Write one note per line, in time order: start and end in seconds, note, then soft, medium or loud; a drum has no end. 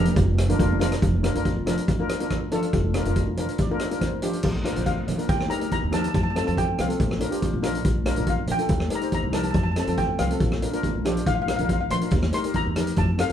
0.00 0.14 F1 medium
0.00 0.17 D4 medium
0.00 0.17 G4 medium
0.00 0.17 A#4 medium
0.00 0.77 A#5 medium
0.05 closed hi-hat medium
0.05 high conga medium
0.16 0.53 F1 loud
0.16 kick loud
0.16 closed hi-hat medium
0.38 cross-stick medium
0.38 closed hi-hat medium
0.38 high conga medium
0.49 0.55 D4 medium
0.49 0.56 F4 medium
0.49 0.56 A#4 medium
0.49 closed hi-hat medium
0.49 low conga medium
0.59 0.96 F1 medium
0.59 0.72 D4 medium
0.59 0.73 F4 medium
0.59 0.73 A#4 loud
0.59 kick medium
0.59 closed hi-hat medium
0.72 high conga medium
0.79 1.02 D4 loud
0.79 1.02 F4 medium
0.79 1.02 A#4 loud
0.79 cross-stick medium
0.79 closed hi-hat medium
0.79 low conga medium
0.92 cross-stick medium
0.92 closed hi-hat medium
1.02 1.30 F1 loud
1.02 kick loud
1.02 closed hi-hat medium
1.02 low conga medium
1.15 high conga medium
1.23 1.30 D4 medium
1.23 1.30 F4 medium
1.23 1.30 A#4 medium
1.23 cross-stick medium
1.23 closed hi-hat medium
1.35 1.54 F1 medium
1.35 1.54 D4 medium
1.35 1.54 F4 medium
1.35 1.54 A#4 medium
1.35 closed hi-hat medium
1.45 kick medium
1.45 closed hi-hat medium
1.57 1.75 F1 medium
1.66 1.86 D4 medium
1.66 1.86 F4 medium
1.66 1.86 A#4 medium
1.66 cross-stick medium
1.66 closed hi-hat medium
1.66 low conga medium
1.78 closed hi-hat medium
1.88 kick loud
1.88 closed hi-hat medium
2.00 2.12 D4 medium
2.00 2.12 F4 medium
2.00 2.12 A#4 medium
2.09 cross-stick medium
2.09 closed hi-hat medium
2.19 2.39 D4 medium
2.19 2.39 F4 medium
2.19 2.39 A#4 medium
2.19 closed hi-hat medium
2.19 high conga medium
2.30 kick medium
2.30 cross-stick medium
2.30 closed hi-hat soft
2.52 2.78 D4 medium
2.52 2.78 F4 medium
2.52 2.78 A4 loud
2.52 closed hi-hat medium
2.52 low conga medium
2.62 closed hi-hat medium
2.73 3.01 F1 loud
2.73 kick loud
2.73 closed hi-hat medium
2.73 low conga medium
2.84 high conga medium
2.94 3.01 D4 medium
2.94 3.01 F4 medium
2.94 3.02 A#4 medium
2.94 cross-stick medium
2.94 closed hi-hat medium
3.05 3.24 F1 medium
3.05 3.25 D4 medium
3.05 3.25 F4 medium
3.05 3.26 A#4 medium
3.05 closed hi-hat medium
3.16 kick medium
3.16 closed hi-hat medium
3.27 3.45 F1 medium
3.37 3.57 D4 medium
3.37 3.57 F4 medium
3.37 3.57 A#4 medium
3.37 3.58 F5 medium
3.37 closed hi-hat medium
3.37 low conga medium
3.49 closed hi-hat medium
3.58 3.99 D5 medium
3.58 kick loud
3.58 closed hi-hat medium
3.71 3.83 D4 medium
3.71 3.83 F4 medium
3.71 3.83 A#4 medium
3.80 cross-stick medium
3.80 closed hi-hat medium
3.90 4.10 D4 medium
3.90 4.10 F4 medium
3.90 4.10 A#4 medium
3.90 closed hi-hat medium
3.90 high conga medium
4.00 4.11 C5 medium
4.00 kick medium
4.00 cross-stick medium
4.00 closed hi-hat medium
4.12 4.42 A#4 medium
4.22 4.44 D4 medium
4.22 4.44 F4 medium
4.22 4.44 G4 medium
4.22 closed hi-hat medium
4.22 low conga medium
4.33 closed hi-hat medium
4.43 4.71 A#1 medium
4.43 kick loud
4.43 crash medium
4.64 4.71 D4 medium
4.64 4.72 F4 medium
4.64 4.72 A#4 medium
4.64 cross-stick medium
4.64 closed hi-hat medium
4.76 5.04 A#1 medium
4.76 5.01 D4 medium
4.76 5.02 F4 medium
4.76 5.02 C5 medium
4.76 closed hi-hat medium
4.76 low conga medium
4.86 5.30 F5 medium
4.86 kick medium
4.86 closed hi-hat medium
5.08 5.26 A#1 medium
5.08 closed hi-hat medium
5.08 high conga medium
5.08 low conga medium
5.17 5.29 D4 medium
5.17 5.29 F4 medium
5.17 5.29 A#4 medium
5.17 closed hi-hat medium
5.29 5.47 D#2 loud
5.29 5.51 G5 medium
5.29 kick loud
5.29 closed hi-hat medium
5.40 cross-stick medium
5.48 5.56 D#4 medium
5.48 5.56 G4 medium
5.48 5.57 A#4 medium
5.48 5.60 A#5 medium
5.48 closed hi-hat medium
5.59 5.79 D#4 medium
5.59 5.80 G4 medium
5.59 5.80 A#4 medium
5.59 closed hi-hat medium
5.59 high conga medium
5.71 5.94 A#5 loud
5.71 kick medium
5.71 closed hi-hat soft
5.84 6.10 D#2 medium
5.84 high conga medium
5.91 6.14 D#4 medium
5.91 6.14 G4 medium
5.91 6.14 A#4 medium
5.91 6.00 A5 medium
5.91 cross-stick medium
5.91 closed hi-hat medium
5.91 low conga medium
6.02 6.06 A5 medium
6.02 closed hi-hat medium
6.07 6.14 A5 medium
6.14 6.42 F2 medium
6.14 6.22 A5 medium
6.14 kick loud
6.14 closed hi-hat medium
6.23 6.29 A5 medium
6.30 6.36 A5 medium
6.35 6.42 C4 medium
6.35 6.42 F4 medium
6.35 6.42 A4 medium
6.35 6.46 A5 medium
6.35 cross-stick medium
6.35 closed hi-hat medium
6.44 6.74 F2 medium
6.44 6.71 C4 medium
6.44 6.71 F4 medium
6.44 6.72 A4 medium
6.44 6.54 A5 medium
6.44 closed hi-hat soft
6.44 low conga medium
6.57 6.80 G5 medium
6.57 kick medium
6.57 closed hi-hat medium
6.78 6.97 C2 medium
6.78 7.61 F5 medium
6.78 cross-stick medium
6.78 closed hi-hat medium
6.78 high conga medium
6.78 low conga medium
6.88 6.99 C4 medium
6.88 6.99 F4 medium
6.88 6.99 A4 medium
6.88 closed hi-hat medium
7.00 7.18 A#1 medium
7.00 kick loud
7.00 closed hi-hat medium
7.11 cross-stick medium
7.19 7.27 D4 medium
7.19 7.27 F4 medium
7.19 7.28 A#4 medium
7.19 closed hi-hat medium
7.30 7.50 D4 medium
7.30 7.51 F4 medium
7.30 7.51 G4 medium
7.30 closed hi-hat medium
7.30 high conga medium
7.42 kick medium
7.42 closed hi-hat medium
7.53 7.80 A#1 medium
7.53 high conga medium
7.62 7.84 D4 medium
7.62 7.85 F4 medium
7.62 7.85 A#4 loud
7.62 cross-stick medium
7.62 closed hi-hat medium
7.62 low conga medium
7.75 closed hi-hat medium
7.85 8.13 A#1 medium
7.85 kick loud
7.85 closed hi-hat medium
8.05 8.13 D4 medium
8.05 8.13 F4 medium
8.05 8.13 A#4 medium
8.05 cross-stick medium
8.05 closed hi-hat medium
8.16 8.44 A#1 medium
8.16 8.43 D4 medium
8.16 8.43 F4 medium
8.16 8.43 A#4 medium
8.16 closed hi-hat medium
8.16 low conga medium
8.27 8.51 F5 medium
8.27 kick medium
8.27 closed hi-hat medium
8.47 8.67 A#1 medium
8.47 closed hi-hat medium
8.47 high conga medium
8.47 low conga medium
8.52 8.94 G5 medium
8.58 8.70 D4 medium
8.58 8.70 F4 medium
8.58 8.70 A4 medium
8.58 closed hi-hat medium
8.69 8.88 D#2 loud
8.69 kick loud
8.69 closed hi-hat medium
8.80 cross-stick medium
8.90 8.98 D#4 medium
8.90 8.98 G4 medium
8.90 8.98 A#4 medium
8.90 closed hi-hat medium
8.95 9.13 A#5 medium
9.01 9.21 D#4 medium
9.01 9.22 G4 medium
9.01 9.22 C5 medium
9.01 closed hi-hat medium
9.01 high conga medium
9.12 9.36 A#5 medium
9.12 kick medium
9.12 closed hi-hat medium
9.23 9.50 C2 medium
9.23 high conga medium
9.32 9.55 D#4 medium
9.32 9.55 G4 medium
9.32 9.55 A#4 medium
9.32 9.42 A5 medium
9.32 cross-stick medium
9.32 closed hi-hat medium
9.32 low conga medium
9.43 9.49 A5 medium
9.43 closed hi-hat medium
9.51 9.82 F2 medium
9.51 9.55 A5 medium
9.51 kick loud
9.51 closed hi-hat medium
9.56 9.62 A5 medium
9.64 9.70 A5 medium
9.72 9.83 F4 medium
9.72 9.79 A5 medium
9.76 9.83 C4 medium
9.76 9.83 A4 medium
9.76 9.87 A5 medium
9.76 cross-stick medium
9.76 closed hi-hat medium
9.76 high conga medium
9.87 10.15 F2 medium
9.87 10.13 C4 medium
9.87 10.13 F4 medium
9.87 10.14 A4 medium
9.87 9.95 A5 medium
9.87 closed hi-hat medium
9.87 low conga medium
9.97 10.08 G5 medium
9.97 kick medium
9.97 closed hi-hat medium
10.19 10.38 C2 medium
10.19 11.01 F5 medium
10.19 cross-stick medium
10.19 closed hi-hat medium
10.19 high conga medium
10.19 low conga medium
10.30 10.41 C4 medium
10.30 10.41 F4 medium
10.30 10.41 A4 medium
10.30 closed hi-hat medium
10.40 10.59 A#1 medium
10.40 kick loud
10.40 closed hi-hat medium
10.52 cross-stick medium
10.62 10.69 D4 medium
10.62 10.69 F4 medium
10.62 10.69 A#4 medium
10.62 closed hi-hat medium
10.72 10.92 D4 medium
10.72 10.93 F4 medium
10.72 10.93 A#4 medium
10.72 closed hi-hat medium
10.72 high conga medium
10.83 kick medium
10.83 closed hi-hat medium
10.83 high conga medium
10.95 11.22 A#1 medium
10.95 high conga medium
11.05 11.26 D4 medium
11.05 11.27 F4 medium
11.05 11.27 G4 medium
11.05 cross-stick medium
11.05 closed hi-hat medium
11.05 low conga medium
11.17 closed hi-hat medium
11.26 11.54 A#1 medium
11.26 11.34 F5 medium
11.26 kick loud
11.26 closed hi-hat medium
11.35 11.41 F5 medium
11.42 11.47 F5 medium
11.47 11.54 D4 medium
11.47 11.54 F4 medium
11.47 11.54 A#4 medium
11.47 11.55 F5 medium
11.47 cross-stick medium
11.47 closed hi-hat medium
11.56 11.86 A#1 medium
11.56 11.84 D4 medium
11.56 11.84 F4 medium
11.56 11.85 A#4 medium
11.56 11.63 F5 medium
11.56 closed hi-hat medium
11.56 low conga medium
11.65 11.72 F5 medium
11.69 11.80 F5 medium
11.69 kick medium
11.69 closed hi-hat medium
11.81 11.87 F5 medium
11.90 12.09 A#1 medium
11.90 12.33 C6 medium
11.90 closed hi-hat medium
11.90 high conga medium
11.90 low conga medium
12.01 12.12 D4 medium
12.01 12.12 F4 medium
12.01 12.12 A#4 medium
12.01 closed hi-hat medium
12.11 12.30 D#2 loud
12.11 kick loud
12.11 closed hi-hat medium
12.22 cross-stick medium
12.33 12.39 D#4 medium
12.33 12.40 G4 medium
12.33 12.40 A#4 medium
12.33 12.56 C6 medium
12.33 closed hi-hat medium
12.44 12.63 D#4 medium
12.44 12.64 G4 medium
12.44 12.64 A#4 medium
12.44 closed hi-hat medium
12.44 high conga medium
12.54 12.99 A#5 loud
12.54 kick medium
12.54 closed hi-hat medium
12.66 12.93 E2 medium
12.66 high conga medium
12.76 12.98 D#4 medium
12.76 12.98 G4 medium
12.76 12.98 A#4 medium
12.76 cross-stick medium
12.76 closed hi-hat medium
12.76 low conga medium
12.87 closed hi-hat medium
12.96 13.25 F2 medium
12.96 13.20 A5 medium
12.96 kick loud
12.96 closed hi-hat soft
13.18 13.25 C4 medium
13.18 13.25 F4 medium
13.18 13.25 A4 medium
13.18 13.32 F5 medium
13.18 cross-stick medium
13.18 closed hi-hat medium
13.29 13.32 C4 medium
13.29 13.32 F4 medium